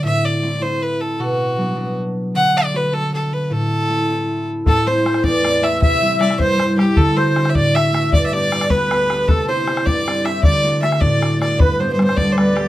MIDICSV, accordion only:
0, 0, Header, 1, 2, 480
1, 0, Start_track
1, 0, Tempo, 385109
1, 50, Time_signature, 6, 3, 24, 8
1, 15806, End_track
2, 0, Start_track
2, 0, Title_t, "Accordion"
2, 0, Program_c, 0, 21
2, 5805, Note_on_c, 0, 69, 88
2, 6072, Note_on_c, 0, 72, 80
2, 6073, Note_off_c, 0, 69, 0
2, 6286, Note_off_c, 0, 72, 0
2, 6308, Note_on_c, 0, 72, 84
2, 6520, Note_off_c, 0, 72, 0
2, 6540, Note_on_c, 0, 74, 78
2, 7016, Note_on_c, 0, 76, 87
2, 7039, Note_off_c, 0, 74, 0
2, 7234, Note_off_c, 0, 76, 0
2, 7254, Note_on_c, 0, 76, 120
2, 7975, Note_on_c, 0, 72, 83
2, 7994, Note_off_c, 0, 76, 0
2, 8131, Note_off_c, 0, 72, 0
2, 8149, Note_on_c, 0, 72, 69
2, 8292, Note_off_c, 0, 72, 0
2, 8311, Note_on_c, 0, 72, 81
2, 8459, Note_on_c, 0, 67, 69
2, 8467, Note_off_c, 0, 72, 0
2, 8675, Note_off_c, 0, 67, 0
2, 8695, Note_on_c, 0, 69, 94
2, 8946, Note_on_c, 0, 72, 84
2, 8957, Note_off_c, 0, 69, 0
2, 9378, Note_off_c, 0, 72, 0
2, 9413, Note_on_c, 0, 74, 90
2, 9650, Note_off_c, 0, 74, 0
2, 9661, Note_on_c, 0, 76, 92
2, 10136, Note_on_c, 0, 74, 98
2, 10142, Note_off_c, 0, 76, 0
2, 10375, Note_off_c, 0, 74, 0
2, 10394, Note_on_c, 0, 74, 78
2, 10822, Note_off_c, 0, 74, 0
2, 10855, Note_on_c, 0, 71, 91
2, 11566, Note_on_c, 0, 69, 86
2, 11595, Note_off_c, 0, 71, 0
2, 11823, Note_on_c, 0, 72, 70
2, 11832, Note_off_c, 0, 69, 0
2, 12297, Note_on_c, 0, 74, 82
2, 12303, Note_off_c, 0, 72, 0
2, 12774, Note_on_c, 0, 76, 78
2, 12796, Note_off_c, 0, 74, 0
2, 13016, Note_off_c, 0, 76, 0
2, 13016, Note_on_c, 0, 74, 84
2, 13497, Note_on_c, 0, 76, 85
2, 13516, Note_off_c, 0, 74, 0
2, 13727, Note_on_c, 0, 74, 78
2, 13737, Note_off_c, 0, 76, 0
2, 14197, Note_off_c, 0, 74, 0
2, 14216, Note_on_c, 0, 74, 67
2, 14451, Note_on_c, 0, 71, 92
2, 14456, Note_off_c, 0, 74, 0
2, 14698, Note_on_c, 0, 72, 66
2, 14714, Note_off_c, 0, 71, 0
2, 14846, Note_off_c, 0, 72, 0
2, 15006, Note_on_c, 0, 72, 74
2, 15161, Note_on_c, 0, 74, 82
2, 15170, Note_off_c, 0, 72, 0
2, 15806, Note_off_c, 0, 74, 0
2, 15806, End_track
0, 0, End_of_file